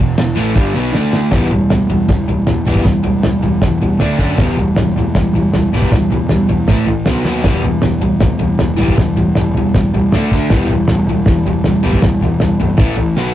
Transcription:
0.00 picked electric bass E1, overdriven electric guitar E2 B2
0.18 picked electric bass E1, overdriven electric guitar E2 B2, snare, ride
0.35 picked electric bass A1, overdriven electric guitar A2 E3 A3, ride
0.55 picked electric bass G1, overdriven electric guitar G2 D3 G3, kick, snare
0.74 picked electric bass B1, overdriven electric guitar B2 F#3 B3
0.92 picked electric bass D2, overdriven electric guitar D3 A3 D4, snare
1.13 snare
1.31 picked electric bass E1, overdriven electric guitar E3 G3 B3, kick, snare, floor tom
1.51 picked electric bass E1, overdriven electric guitar E3 G3, floor tom
1.70 picked electric bass E1, overdriven electric guitar E3 G3, snare, floor tom
1.89 picked electric bass E1, overdriven electric guitar E3 G3, floor tom
2.08 picked electric bass E1, overdriven electric guitar E3 G3, kick, snare, floor tom
2.28 picked electric bass E1, overdriven electric guitar E3 G3, floor tom
2.47 picked electric bass E1, overdriven electric guitar E3 G3, snare, floor tom
2.65 picked electric bass E1, overdriven electric guitar E3 G3 B3, floor tom
2.76 kick
2.85 picked electric bass E1, overdriven electric guitar E3 G3, kick, snare, floor tom
3.03 picked electric bass E1, overdriven electric guitar E3 G3, floor tom
3.23 picked electric bass E1, overdriven electric guitar E3 G3, snare, floor tom
3.41 picked electric bass E1, overdriven electric guitar E3 G3, floor tom
3.62 picked electric bass E1, overdriven electric guitar E3 G3, kick, snare, floor tom
3.81 picked electric bass E1, overdriven electric guitar E3 G3, floor tom
3.99 picked electric bass D2, overdriven electric guitar D3 A3 D4, snare, floor tom
4.19 picked electric bass F#2, overdriven electric guitar D3 A3 D4, kick, floor tom
4.38 picked electric bass E1, overdriven electric guitar E3 G3 B3, kick, snare, floor tom
4.57 picked electric bass E1, overdriven electric guitar E3 G3, floor tom
4.75 picked electric bass E1, overdriven electric guitar E3 G3, snare, floor tom
4.96 picked electric bass E1, overdriven electric guitar E3 G3, floor tom
5.15 picked electric bass E1, overdriven electric guitar E3 G3, kick, snare, floor tom
5.33 picked electric bass E1, overdriven electric guitar E3 G3, floor tom
5.52 picked electric bass E1, overdriven electric guitar E3 G3, snare, floor tom
5.72 picked electric bass E1, overdriven electric guitar E3 G3 B3, floor tom
5.82 kick
5.92 picked electric bass E1, overdriven electric guitar E3 G3, kick, snare, floor tom
6.10 picked electric bass E1, overdriven electric guitar E3 G3, floor tom
6.28 picked electric bass E1, overdriven electric guitar E3 G3, snare, floor tom
6.48 picked electric bass E1, overdriven electric guitar E3 G3, floor tom
6.68 picked electric bass A1, overdriven electric guitar A2 E3 A3, kick, snare, floor tom
6.87 picked electric bass A1, overdriven electric guitar A2 E3, floor tom
7.06 picked electric bass B1, overdriven electric guitar B2 F#3 B3, snare, floor tom
7.25 picked electric bass D#2, overdriven electric guitar B2 F#3 B3, snare
7.44 picked electric bass E1, overdriven electric guitar E3 G3 B3, kick, snare, floor tom
7.63 picked electric bass E1, overdriven electric guitar E3 G3, floor tom
7.82 picked electric bass E1, overdriven electric guitar E3 G3, snare, floor tom
8.02 picked electric bass E1, overdriven electric guitar E3 G3, floor tom
8.20 picked electric bass E1, overdriven electric guitar E3 G3, kick, snare, floor tom
8.39 picked electric bass E1, overdriven electric guitar E3 G3, floor tom
8.59 picked electric bass E1, overdriven electric guitar E3 G3, snare, floor tom
8.76 picked electric bass E1, overdriven electric guitar E3 G3 B3, floor tom
8.88 kick
8.97 picked electric bass E1, overdriven electric guitar E3 G3, kick, snare, floor tom
9.16 picked electric bass E1, overdriven electric guitar E3 G3, floor tom
9.35 picked electric bass E1, overdriven electric guitar E3 G3, snare, floor tom
9.55 picked electric bass E1, overdriven electric guitar E3 G3, floor tom
9.74 picked electric bass E1, overdriven electric guitar E3 G3, kick, snare, floor tom
9.94 picked electric bass E1, overdriven electric guitar E3 G3, floor tom
10.12 picked electric bass D2, overdriven electric guitar D3 A3 D4, snare, floor tom
10.31 picked electric bass D2, overdriven electric guitar D3 A3 D4, kick, floor tom
10.50 picked electric bass E1, overdriven electric guitar E3 G3 B3, kick, snare, floor tom
10.69 picked electric bass E1, overdriven electric guitar E3 G3, floor tom
10.88 picked electric bass E1, overdriven electric guitar E3 G3, snare, floor tom
11.07 picked electric bass E1, overdriven electric guitar E3 G3, floor tom
11.26 picked electric bass E1, overdriven electric guitar E3 G3, kick, snare, floor tom
11.45 picked electric bass E1, overdriven electric guitar E3 G3, floor tom
11.64 picked electric bass E1, overdriven electric guitar E3 G3, snare, floor tom
11.83 picked electric bass E1, overdriven electric guitar E3 G3 B3, floor tom
11.93 kick
12.02 picked electric bass E1, overdriven electric guitar E3 G3, kick, snare, floor tom
12.21 picked electric bass E1, overdriven electric guitar E3 G3, floor tom
12.40 picked electric bass E1, overdriven electric guitar E3 G3, snare, floor tom
12.60 picked electric bass G1, overdriven electric guitar E3 G3, floor tom
12.77 picked electric bass A1, overdriven electric guitar A2 E3 A3, kick, snare, floor tom
12.97 picked electric bass A1, overdriven electric guitar A2 E3, floor tom
13.17 picked electric bass B1, overdriven electric guitar B2 F#3 B3, snare

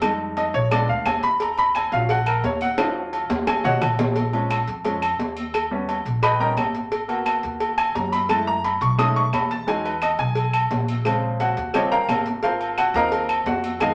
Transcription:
Already playing: upright bass F2
0.02 grand piano G3 G#3 D#4, cowbell, low agogo, claves
0.37 grand piano D#5, cowbell, low timbale, low agogo
0.54 upright bass A#1, grand piano C#5, cowbell
0.71 grand piano G#3 B3 D4 D5, cowbell, low agogo, claves
0.88 upright bass D2, grand piano F5
1.06 upright bass D#2, grand piano G#5, cowbell, low timbale, low agogo, claves
1.23 grand piano B5, cowbell
1.40 grand piano A#5, cowbell, low agogo
1.58 grand piano B5, low agogo
1.75 grand piano G#5, cowbell, low timbale, low agogo, claves
1.92 upright bass A#1, grand piano F#3 C#4 F4 F5, cowbell
2.09 grand piano F#5, cowbell, low agogo
2.26 grand piano A#4, low agogo, claves
2.43 upright bass D#2, grand piano C#5, cowbell, low timbale
2.61 grand piano F#5, low agogo
2.78 grand piano F#3 C#4 F4, cowbell, high timbale, low agogo, claves
3.13 cowbell, low agogo
3.30 upright bass D#2, cowbell, low timbale
3.47 grand piano G#4 G#5, cowbell, high bongo, low timbale, low agogo, claves
3.64 upright bass B1, grand piano F#4 C#5 D#5 F#5, low bongo, low timbale
3.82 upright bass A#1, cowbell, low bongo, low agogo, claves
3.99 cowbell, low bongo, low timbale
4.16 cowbell, low agogo
4.33 grand piano F3 G#3 C#4, low agogo
4.50 cowbell, low timbale, low agogo, claves
4.68 upright bass F2, cowbell
4.85 grand piano F3 G#3 C#4, cowbell, low agogo
5.02 low agogo, claves
5.19 upright bass D#2, cowbell, low timbale
5.37 low agogo
5.54 cowbell, low agogo, claves
5.71 grand piano G3 B3 C#4
5.89 cowbell, low timbale, low agogo
6.05 upright bass A#1, cowbell
6.23 grand piano B4 D#5 G5 B5, cowbell, low agogo, claves
6.40 grand piano G3 B3 C#4 A#4 D#5 G5 A#5
6.57 upright bass G#1, cowbell, low timbale, low agogo, claves
6.75 cowbell
6.92 cowbell, low agogo
7.08 grand piano A#3 B3 F#4, low agogo
7.26 cowbell, low timbale, low agogo, claves
7.43 upright bass D#2, cowbell
7.60 cowbell, low agogo
7.78 grand piano G#5, low agogo, claves
7.95 upright bass F#2, grand piano A#5, cowbell, low timbale
8.12 grand piano B5, low agogo
8.29 grand piano G#3 A3 E4 A5, cowbell, low agogo, claves
8.47 grand piano A#5
8.64 grand piano B5, cowbell, low timbale, low agogo
8.81 upright bass B1, grand piano C#6, cowbell
8.98 grand piano G#3 A3 C#4 D#4 D#6, cowbell, low agogo, claves
9.16 grand piano C#6
9.33 upright bass E2, grand piano B5, cowbell, low timbale, low agogo, claves
9.51 grand piano A5, cowbell
9.67 grand piano F#3 G#3 D#4 G#5, cowbell, low agogo
9.85 grand piano B4, low agogo
10.02 grand piano D#5, cowbell, low timbale, low agogo, claves
10.19 upright bass B1, grand piano G#5, cowbell
10.35 cowbell, low agogo
10.53 low agogo, claves
10.70 upright bass A#1, cowbell, low timbale
10.88 low agogo
11.05 grand piano C#3 G#3 C4, cowbell, low agogo, claves
11.40 grand piano F#4 F#5, cowbell, low timbale, low agogo
11.57 upright bass D#2, cowbell
11.73 grand piano C#3 F3 G3 C4 G4 C#5 D#5 G5, cowbell, low agogo, claves
11.92 grand piano A#4 F5 G5 A#5
12.08 upright bass G#1, cowbell, low timbale, low agogo, claves
12.26 cowbell
12.43 grand piano F4 A#4 C5 F5, cowbell, low agogo
12.61 low agogo
12.78 grand piano F#4 F#5, cowbell, low timbale, low agogo, claves
12.94 upright bass D#2, grand piano F3 A#3 C4 A#4 D#5 F5 A#5, cowbell
13.12 cowbell, low agogo
13.29 low agogo, claves
13.46 upright bass F2, grand piano F#4 F#5, cowbell, low timbale
13.64 low agogo
13.80 grand piano D#3 G#3 B3 G#4 D#5 F5 G#5, cowbell, low agogo, claves

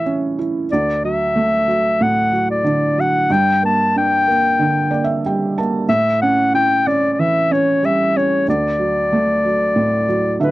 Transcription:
Already playing: felt piano A2 E3 E4 A4, clarinet E5
0.06 felt piano C#4
0.39 felt piano E4
0.71 felt piano D2, clarinet D5
1.04 felt piano F#3, clarinet E5
1.36 felt piano A3
1.68 felt piano F#3
2.01 felt piano A2, clarinet F#5
2.32 felt piano F#3
2.51 clarinet D5
2.64 felt piano D3
2.98 felt piano F#3, clarinet F#5
3.30 felt piano G2, clarinet G5
3.63 felt piano A#3, clarinet A5
3.96 felt piano D4, clarinet G5
4.27 felt piano A#3
4.59 felt piano D3
4.91 felt piano A#3 D5
5.04 felt piano E5
5.26 felt piano G3 G5
5.58 felt piano A#3 A5
5.89 felt piano A2, clarinet E5
6.22 felt piano C#4, clarinet F#5
6.54 felt piano E4, clarinet G5
6.87 felt piano C#4, clarinet D5
7.13 clarinet D5
7.19 felt piano E3, clarinet E5
7.51 felt piano C#4, clarinet C#5
7.83 felt piano G3, clarinet E5
8.16 felt piano C#4, clarinet C#5
8.48 felt piano D2, clarinet D5
8.79 felt piano F#3
9.13 felt piano A3
9.45 felt piano F#3
9.76 felt piano A2
10.08 felt piano F#3
10.40 felt piano D3 E5, clarinet B4

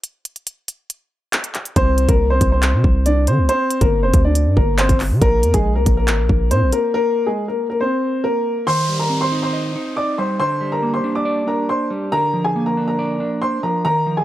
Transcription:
0.04 closed hi-hat
0.25 closed hi-hat
0.36 closed hi-hat
0.47 closed hi-hat
0.68 closed hi-hat
0.90 closed hi-hat
1.33 clap, closed hi-hat
1.44 closed hi-hat
1.55 clap, closed hi-hat, open hi-hat
1.65 closed hi-hat
1.76 808-style bass C2, upright piano C4 C5, kick, closed hi-hat
1.98 closed hi-hat
2.09 808-style bass C2, upright piano A#3 A#4, kick, closed hi-hat
2.30 upright piano C4 C5
2.41 808-style bass C2, kick, closed hi-hat
2.52 upright piano C4 C5
2.63 clap, closed hi-hat
2.73 808-style bass C3
2.84 808-style bass C2, kick
3.06 upright piano D4 D5, closed hi-hat
3.27 808-style bass D#3, upright piano C4 C5, closed hi-hat
3.38 808-style bass C2
3.49 upright piano C4 C5, closed hi-hat
3.71 closed hi-hat
3.81 808-style bass G1, upright piano A#3 A#4, kick, closed hi-hat
4.03 808-style bass F1, upright piano C4 C5
4.14 808-style bass D2, kick, closed hi-hat
4.25 upright piano D4 D5
4.35 closed hi-hat
4.46 808-style bass G2
4.57 808-style bass G1, upright piano A#3 A#4, kick
4.78 upright piano C4 C5, clap, closed hi-hat
4.89 808-style bass G1, kick, closed hi-hat
5.00 clap, open hi-hat
5.11 808-style bass D3
5.22 808-style bass A#1, upright piano A#3 A#4, kick, closed hi-hat
5.43 808-style bass F2, closed hi-hat
5.54 808-style bass A#1, upright piano G#3 G#4, kick, closed hi-hat
5.75 808-style bass C2, upright piano A#3 A#4
5.86 808-style bass A#1, kick, closed hi-hat
5.97 upright piano A#3 A#4
6.08 808-style bass G#1, clap, closed hi-hat
6.19 808-style bass A#1
6.29 808-style bass A#1, kick
6.51 808-style bass A#2, upright piano C4 C5, closed hi-hat
6.62 808-style bass A#1
6.72 upright piano A#3 A#4, closed hi-hat
6.94 upright piano A#3 A#4
7.27 upright piano G#3 G#4
7.48 upright piano A#3 A#4
7.70 upright piano A#3 A#4
7.81 upright piano C4 C5
8.24 upright piano A#3 A#4
8.67 clean electric guitar D#3, upright piano C5 C6, downlifter
8.89 clean electric guitar G3
8.99 upright piano A#4 A#5
9.09 clean electric guitar C4
9.21 upright piano C5 C6
9.32 clean electric guitar D#4
9.42 upright piano C5 C6
9.53 clean electric guitar D#5
9.75 clean electric guitar D#4
9.97 upright piano D5 D6
10.18 clean electric guitar G3, upright piano C5 C6
10.39 clean electric guitar D3, upright piano C5 C6
10.61 clean electric guitar G3
10.72 upright piano A#4 A#5
10.83 clean electric guitar A#3
10.94 upright piano C5 C6
11.04 clean electric guitar D4
11.15 upright piano D5 D6
11.25 clean electric guitar D5
11.47 clean electric guitar D4, upright piano A#4 A#5
11.69 upright piano C5 C6
11.90 clean electric guitar G3
12.12 clean electric guitar D3, upright piano A#4 A#5
12.33 clean electric guitar F3
12.44 upright piano G#4 G#5
12.56 clean electric guitar A#3
12.66 upright piano A#4 A#5
12.77 clean electric guitar D4
12.88 upright piano A#4 A#5
12.99 clean electric guitar D5
13.20 clean electric guitar D4
13.42 upright piano C5 C6
13.63 clean electric guitar F3, upright piano A#4 A#5
13.85 clean electric guitar D#3, upright piano A#4 A#5
14.06 clean electric guitar F3
14.17 upright piano G#4 G#5

